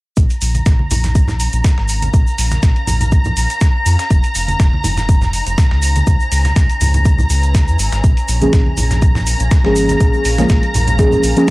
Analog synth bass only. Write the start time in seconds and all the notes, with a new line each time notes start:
0.17 A#1
0.41 A#1
0.66 A#1
0.91 A#1
1.53 A#1
1.78 G#1
2.14 A#1
2.38 A#1
2.63 A#1
2.87 A#1
3.36 A#1
3.86 F2
4.10 F1
4.35 F1
4.60 F1
4.84 F1
5.47 F1
5.71 C#2
6.07 C#2
6.32 C#2
6.56 C#2
6.81 C#2
7.30 C#2
7.68 E2
7.79 G#1
7.92 G#1
8.04 A#1
8.28 A#1
8.53 A#1
8.77 A#1
9.40 A#1
9.65 G#1
10.01 A#1
10.25 A#1
10.50 A#1
10.74 A#1
11.23 A#1